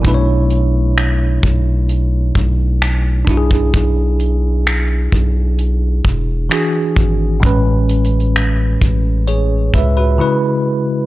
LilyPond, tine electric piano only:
\new Staff \with { instrumentName = "Tine electric piano" } { \time 4/4 \key e \mixolydian \tempo 4 = 65 << { r1 | r1 | r2 <gis' cis''>8 <b' e''>16 <fis' b'>8 r8. | } \\ { <b, a d' e' b' cis''>2.~ <b, a d' e' b' cis''>8 <d' e' fis' gis'>8~ | <d' e' fis' gis'>2. <e d' fis' gis'>4 | <a, gis cis' b'>2. <cis gis e' b'>4 | } >> }